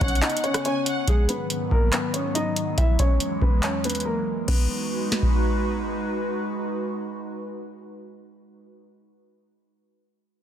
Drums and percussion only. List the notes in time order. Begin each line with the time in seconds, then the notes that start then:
0.01 kick, closed hi-hat
0.08 closed hi-hat
0.15 closed hi-hat
0.22 clap, closed hi-hat
0.30 closed hi-hat
0.37 closed hi-hat
0.44 closed hi-hat
0.54 cross-stick, closed hi-hat
0.65 closed hi-hat
0.86 closed hi-hat
1.08 kick, closed hi-hat
1.29 closed hi-hat
1.50 closed hi-hat
1.71 kick
1.93 clap, closed hi-hat
2.14 closed hi-hat
2.35 closed hi-hat
2.56 closed hi-hat
2.78 kick, closed hi-hat
2.99 kick, closed hi-hat
3.20 closed hi-hat
3.42 kick
3.63 clap, closed hi-hat
3.84 closed hi-hat
3.90 closed hi-hat
3.95 closed hi-hat
4.00 closed hi-hat
4.48 kick, crash
5.12 snare
5.22 kick